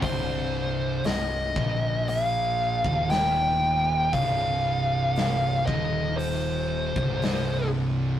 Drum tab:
HH |o---o---o---o---|o---o---o---o---|
SD |----o-------o---|----o-------o---|
BD |o-----o----o----|o-----o----o----|